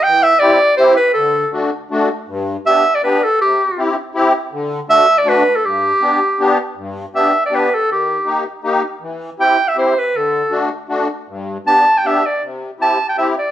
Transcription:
<<
  \new Staff \with { instrumentName = "Clarinet" } { \time 3/4 \key g \major \tempo 4 = 160 g''8 e''8 d''4 c''8 b'8 | a'4 r2 | r4 e''8. d''16 b'8 a'8 | g'4. r4. |
r4 e''8. d''16 b'8. a'16 | g'2~ g'8 r8 | r4 e''8. d''16 b'8 a'8 | g'4. r4. |
r4 g''8. e''16 c''8 b'8 | a'4. r4. | r4 a''8. g''16 e''8 d''8 | r4 a''8. g''16 e''8 d''8 | }
  \new Staff \with { instrumentName = "Accordion" } { \time 3/4 \key g \major e4 <c' e' g'>8 r8 <c' e' g'>8 r8 | d4 <a d' fis'>8 r8 <a d' fis'>8 r8 | g,4 <b d' g'>8 r8 <b d' g'>8 r8 | c4 <c' e' g'>8 r8 <c' e' g'>8 r8 |
d4 <a d' fis'>8 r8 <a d' fis'>8 r8 | g,4 <b d' g'>8 r8 <b d' g'>8 r8 | g,4 <b d' g'>8 r8 <b d' g'>8 r8 | ees4 <bes ees' g'>8 r8 <bes ees' g'>8 r8 |
e4 <c' e' g'>8 r8 <c' e' g'>8 r8 | d4 <a d' fis'>8 r8 <a d' fis'>8 r8 | g,4 <b d' g'>8 r8 <b d' g'>8 r8 | c4 <c' e' g'>8 r8 <c' e' g'>8 r8 | }
>>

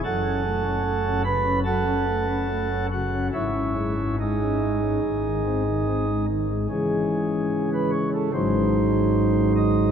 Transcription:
<<
  \new Staff \with { instrumentName = "Pipe organ" } { \time 4/4 \key cis \minor \tempo 4 = 73 <a' fis'' a''>4. <b' b''>8 <a' fis'' a''>4. <fis' fis''>8 | <e' cis'' e''>4 <dis' gis' dis''>2~ <dis' gis' dis''>8 r8 | gis'4~ gis'16 b'16 cis''16 a'16 bis'4. dis''8 | }
  \new Staff \with { instrumentName = "Pipe organ" } { \clef bass \time 4/4 \key cis \minor << { fis,16 cis'16 a16 cis'16 a16 cis'16 cis16 cis'16 fis16 cis'16 a16 cis'16 a16 cis'16 cis16 cis'16 | gis,16 cis'16 gis16 cis'16 gis16 cis'16 gis16 cis'16 gis,16 dis16 bis16 dis16 bis16 gis16 dis16 gis16 | <cis e gis cis'>2 <gis, fis gis dis'>2 | } \\ { fis,,1 | gis,,2 gis,,2 | r2 gis,,2 | } >> }
>>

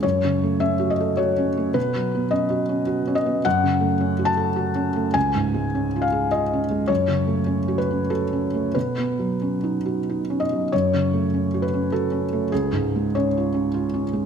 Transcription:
\new Staff \with { instrumentName = "Felt piano" } { \time 3/4 \key fis \dorian \tempo 4 = 103 << { cis''4 e''8 dis''8 cis''4 | b'4 dis''4. dis''8 | fis''4. a''4. | gis''4. eis''8 dis''8 r8 |
cis''4. b'8 a'4 | b'2~ b'8 dis''8 | cis''4. b'8 a'4 | gis'4 cis''4. r8 | } \\ { \tuplet 3/2 { fis,8 cis8 a8 cis'8 fis'8 a'8 fis'8 cis'8 a8 } | \tuplet 3/2 { b,8 fis8 b8 cis'8 fis'8 cis'8 fis'8 cis'8 b8 } | \tuplet 3/2 { fis,8 cis8 a8 cis'8 fis'8 a'8 fis'8 cis'8 a8 } | \tuplet 3/2 { cis,8 gis,8 gis8 cis'8 eis'8 gis'8 eis'8 cis'8 gis8 } |
\tuplet 3/2 { fis,8 cis8 a8 cis'8 fis'8 cis'8 fis'8 cis'8 a8 } | \tuplet 3/2 { b,8 b8 fis8 cis'8 dis'8 fis'8 dis'8 cis'8 fis8 } | \tuplet 3/2 { fis,8 cis8 a8 cis'8 fis'8 cis'8 fis'8 cis'8 a8 } | \tuplet 3/2 { cis,8 gis,8 gis8 cis'8 eis'8 cis'8 eis'8 cis'8 gis8 } | } >> }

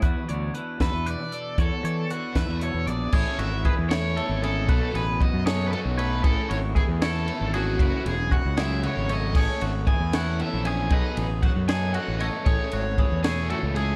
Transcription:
<<
  \new Staff \with { instrumentName = "Overdriven electric guitar" } { \time 6/8 \key e \mixolydian \tempo 4. = 77 r4. b'8 d''4 | a'4 fis''8 e''8 cis''8 d''8 | \key a \lydian cis''8 e''8 b'8 cis''4 a'8~ | a'8 b'8 dis''8 cis''16. b'32 a'8 b'8 |
a'8 cis''8 gis'8 a'4 fis'8~ | fis'8 gis'8 fis''8 e''8 cis''8 dis''8 | cis''8 r8 gis''8 fis''8 e''8 gis''8 | dis''8 r8 fis''8 gis''8 fis''8 dis''8 |
cis''4. gis'8 fis'8 gis'8 | }
  \new Staff \with { instrumentName = "Clean electric guitar" } { \time 6/8 \key e \mixolydian b'8 cis''8 b'8 a'8 b'8 a'8 | cis''8 cis''8 fis'8 b'8 a'8 gis'8 | \key a \lydian gis'8 fis'8 gis'8 cis''8 a'8 gis'8 | b'8 gis'8 fis'8 gis'8 fis'8 cis''8 |
gis'8 fis'8 gis'8 cis''8 a'8 gis'8 | b'8 gis'8 fis'8 gis'8 fis'8 cis''8 | gis'8 fis'8 gis'8 cis''8 a'8 gis'8 | b'8 gis'8 fis'8 gis'8 fis'8 cis''8 |
gis'8 fis'8 gis'8 cis''8 a'8 gis'8 | }
  \new Staff \with { instrumentName = "Overdriven electric guitar" } { \time 6/8 \key e \mixolydian r2. | r2. | \key a \lydian <a cis' e' a'>8 r4 <a cis' e' a'>8 <a cis' e' a'>8 <a cis' e' a'>8 | <fis b dis' a'>8 r4 <fis b dis' a'>8 <fis b dis' a'>8 <fis b dis' a'>8 |
<a cis' e' a'>8 r4 <a cis' e' a'>8 <a cis' e' a'>8 <a cis' e' a'>8 | <fis a cis' fis'>8 r4 <fis a cis' fis'>8 <fis a cis' fis'>8 <fis a cis' fis'>8 | <a cis' e' a'>8 r4 <a cis' e' a'>8 <a cis' e' a'>8 <a cis' e' a'>8 | <fis b dis' a'>8 r4 <fis b dis' a'>8 <fis b dis' a'>8 <fis b dis' a'>8 |
<a cis' e' a'>8 r4 <a cis' e' a'>8 <a cis' e' a'>8 <a cis' e' a'>8 | }
  \new Staff \with { instrumentName = "Clean electric guitar" } { \clef bass \time 6/8 \key e \mixolydian << { fis'8 d'4 fis'4 d'8 | fis'8 d'4 e'16 fis'8. d'8 | \key a \lydian e'4. e'4 cis'8 | fis'4. cis'4 a8 |
e'4. e'4 cis'8 | e'4. e'4 a8~ | a4. e'4 cis'8 | gis'4. cis'4 a8~ |
a2. | } \\ { <e, e>4 e4 b,4 | e,4 e4 b,4 | r4 e4 e,4 | b,4 fis4 fis,4 |
r4 e4 e,4 | fis,4 fis4 cis4 | r4 e4 e,4 | b,4 fis4 fis,4 |
r4 e8 b,8 a,8 gis,8 | } >> }
  \new Staff \with { instrumentName = "Fingered electric bass" } { \clef bass \time 6/8 \key e \mixolydian e,16 r16 d,8 r8 e,16 e,8 r8. | e,16 r16 e8 r8 e,16 e,8 e,16 bes,,8 | \key a \lydian a,,16 r16 gis,,8. e,4 gis,,8. | b,,16 r16 a,,8. fis,4 b,,8. |
a,,16 r16 gis,,8. e,4 gis,,8. | fis,,16 r16 e,,8. cis,4 gis,,8. | a,,16 r16 gis,,8. e,4 bes,,8. | b,,16 r16 a,,8. fis,4 a,,8 r16 |
a,,16 r16 gis,,8. e,4 cis,8. | }
  \new DrumStaff \with { instrumentName = "Drums" } \drummode { \time 6/8 <hh bd>8 hh8 hh8 <hh bd sn>8 hh8 hh8 | <hh bd>8 hh8 hh8 <hh bd sn>8 hh8 hh8 | <cymc bd>8 cymr8 <bd cymr>8 <cymr sn>8 cymr8 cymr8 | <bd cymr>8 cymr8 <bd cymr>8 <cymr sn>8 cymr8 cymr8 |
<bd cymr>8 cymr8 <bd cymr>8 <cymr sn>8 cymr8 cymr8 | <bd cymr>8 cymr8 <bd cymr>8 <cymr sn>8 cymr8 cymr8 | <cymc bd>8 cymr8 <bd cymr>8 <cymr sn>8 cymr8 cymr8 | <bd cymr>8 cymr8 <bd cymr>8 <cymr sn>8 cymr8 cymr8 |
<bd cymr>8 cymr8 <bd cymr>8 <cymr sn>8 cymr8 cymr8 | }
>>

